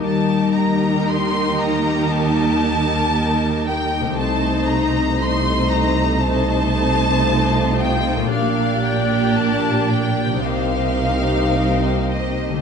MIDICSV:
0, 0, Header, 1, 7, 480
1, 0, Start_track
1, 0, Tempo, 1022147
1, 21, Time_signature, 4, 2, 24, 8
1, 981, Tempo, 1039861
1, 4341, Tempo, 1054482
1, 4821, Tempo, 1123596
1, 5758, End_track
2, 0, Start_track
2, 0, Title_t, "Violin section"
2, 0, Program_c, 0, 48
2, 18, Note_on_c, 0, 81, 66
2, 242, Note_off_c, 0, 81, 0
2, 256, Note_on_c, 0, 82, 60
2, 499, Note_off_c, 0, 82, 0
2, 506, Note_on_c, 0, 84, 70
2, 743, Note_off_c, 0, 84, 0
2, 744, Note_on_c, 0, 82, 64
2, 982, Note_off_c, 0, 82, 0
2, 985, Note_on_c, 0, 81, 76
2, 1707, Note_on_c, 0, 79, 69
2, 1712, Note_off_c, 0, 81, 0
2, 1936, Note_on_c, 0, 81, 74
2, 1943, Note_off_c, 0, 79, 0
2, 2174, Note_off_c, 0, 81, 0
2, 2178, Note_on_c, 0, 82, 70
2, 2419, Note_off_c, 0, 82, 0
2, 2421, Note_on_c, 0, 84, 76
2, 2655, Note_on_c, 0, 82, 68
2, 2661, Note_off_c, 0, 84, 0
2, 2897, Note_on_c, 0, 81, 81
2, 2901, Note_off_c, 0, 82, 0
2, 3619, Note_on_c, 0, 79, 70
2, 3621, Note_off_c, 0, 81, 0
2, 3855, Note_off_c, 0, 79, 0
2, 3858, Note_on_c, 0, 77, 70
2, 4095, Note_off_c, 0, 77, 0
2, 4098, Note_on_c, 0, 79, 59
2, 4334, Note_on_c, 0, 81, 68
2, 4341, Note_off_c, 0, 79, 0
2, 4576, Note_off_c, 0, 81, 0
2, 4579, Note_on_c, 0, 79, 65
2, 4821, Note_on_c, 0, 77, 67
2, 4822, Note_off_c, 0, 79, 0
2, 5539, Note_off_c, 0, 77, 0
2, 5539, Note_on_c, 0, 75, 53
2, 5758, Note_off_c, 0, 75, 0
2, 5758, End_track
3, 0, Start_track
3, 0, Title_t, "Violin section"
3, 0, Program_c, 1, 48
3, 15, Note_on_c, 1, 70, 55
3, 16, Note_on_c, 1, 67, 52
3, 1928, Note_off_c, 1, 67, 0
3, 1928, Note_off_c, 1, 70, 0
3, 1955, Note_on_c, 1, 72, 57
3, 1957, Note_on_c, 1, 63, 54
3, 2416, Note_off_c, 1, 72, 0
3, 2418, Note_off_c, 1, 63, 0
3, 2422, Note_on_c, 1, 72, 56
3, 2423, Note_on_c, 1, 63, 53
3, 2894, Note_off_c, 1, 72, 0
3, 2895, Note_off_c, 1, 63, 0
3, 2910, Note_on_c, 1, 63, 58
3, 2911, Note_on_c, 1, 72, 57
3, 3379, Note_off_c, 1, 63, 0
3, 3386, Note_on_c, 1, 65, 53
3, 3847, Note_off_c, 1, 72, 0
3, 3862, Note_off_c, 1, 65, 0
3, 3868, Note_on_c, 1, 74, 58
3, 3870, Note_on_c, 1, 67, 57
3, 4818, Note_off_c, 1, 67, 0
3, 4823, Note_on_c, 1, 67, 54
3, 4825, Note_on_c, 1, 72, 49
3, 4826, Note_off_c, 1, 74, 0
3, 5758, Note_off_c, 1, 67, 0
3, 5758, Note_off_c, 1, 72, 0
3, 5758, End_track
4, 0, Start_track
4, 0, Title_t, "Viola section"
4, 0, Program_c, 2, 48
4, 10, Note_on_c, 2, 58, 49
4, 12, Note_on_c, 2, 63, 48
4, 1925, Note_off_c, 2, 58, 0
4, 1926, Note_off_c, 2, 63, 0
4, 1947, Note_on_c, 2, 57, 52
4, 1947, Note_on_c, 2, 63, 47
4, 2412, Note_off_c, 2, 57, 0
4, 2412, Note_off_c, 2, 63, 0
4, 2426, Note_on_c, 2, 57, 55
4, 2426, Note_on_c, 2, 63, 51
4, 2896, Note_off_c, 2, 57, 0
4, 2896, Note_off_c, 2, 63, 0
4, 2905, Note_on_c, 2, 57, 55
4, 2905, Note_on_c, 2, 63, 53
4, 3844, Note_off_c, 2, 57, 0
4, 3844, Note_off_c, 2, 63, 0
4, 3863, Note_on_c, 2, 58, 54
4, 3865, Note_on_c, 2, 62, 55
4, 4813, Note_off_c, 2, 58, 0
4, 4817, Note_on_c, 2, 63, 49
4, 4819, Note_on_c, 2, 58, 48
4, 4824, Note_off_c, 2, 62, 0
4, 5758, Note_off_c, 2, 58, 0
4, 5758, Note_off_c, 2, 63, 0
4, 5758, End_track
5, 0, Start_track
5, 0, Title_t, "Harp"
5, 0, Program_c, 3, 46
5, 0, Note_on_c, 3, 51, 42
5, 0, Note_on_c, 3, 55, 36
5, 0, Note_on_c, 3, 58, 33
5, 0, Note_on_c, 3, 63, 33
5, 1753, Note_off_c, 3, 51, 0
5, 1773, Note_off_c, 3, 55, 0
5, 1794, Note_off_c, 3, 58, 0
5, 1813, Note_off_c, 3, 63, 0
5, 1865, Note_on_c, 3, 48, 48
5, 1885, Note_on_c, 3, 57, 38
5, 1907, Note_on_c, 3, 60, 38
5, 1927, Note_on_c, 3, 63, 37
5, 3665, Note_off_c, 3, 48, 0
5, 3686, Note_off_c, 3, 57, 0
5, 3707, Note_off_c, 3, 60, 0
5, 3727, Note_off_c, 3, 63, 0
5, 3781, Note_on_c, 3, 46, 46
5, 3801, Note_on_c, 3, 58, 36
5, 3822, Note_on_c, 3, 62, 37
5, 3842, Note_on_c, 3, 67, 37
5, 4741, Note_on_c, 3, 48, 40
5, 4755, Note_off_c, 3, 58, 0
5, 4760, Note_on_c, 3, 58, 33
5, 4780, Note_on_c, 3, 63, 34
5, 4796, Note_off_c, 3, 67, 0
5, 4801, Note_on_c, 3, 67, 33
5, 4803, Note_off_c, 3, 46, 0
5, 4823, Note_off_c, 3, 62, 0
5, 5703, Note_on_c, 3, 50, 35
5, 5722, Note_on_c, 3, 57, 27
5, 5741, Note_on_c, 3, 62, 29
5, 5756, Note_off_c, 3, 67, 0
5, 5758, Note_off_c, 3, 48, 0
5, 5758, Note_off_c, 3, 50, 0
5, 5758, Note_off_c, 3, 57, 0
5, 5758, Note_off_c, 3, 58, 0
5, 5758, Note_off_c, 3, 62, 0
5, 5758, Note_off_c, 3, 63, 0
5, 5758, End_track
6, 0, Start_track
6, 0, Title_t, "Cello section"
6, 0, Program_c, 4, 48
6, 22, Note_on_c, 4, 51, 48
6, 1931, Note_off_c, 4, 51, 0
6, 1949, Note_on_c, 4, 48, 54
6, 3844, Note_off_c, 4, 48, 0
6, 3862, Note_on_c, 4, 46, 55
6, 4805, Note_off_c, 4, 46, 0
6, 4823, Note_on_c, 4, 48, 46
6, 5758, Note_off_c, 4, 48, 0
6, 5758, End_track
7, 0, Start_track
7, 0, Title_t, "Double bass section"
7, 0, Program_c, 5, 48
7, 21, Note_on_c, 5, 39, 47
7, 1930, Note_off_c, 5, 39, 0
7, 1947, Note_on_c, 5, 36, 54
7, 3843, Note_off_c, 5, 36, 0
7, 3863, Note_on_c, 5, 34, 52
7, 4805, Note_off_c, 5, 34, 0
7, 4824, Note_on_c, 5, 36, 50
7, 5758, Note_off_c, 5, 36, 0
7, 5758, End_track
0, 0, End_of_file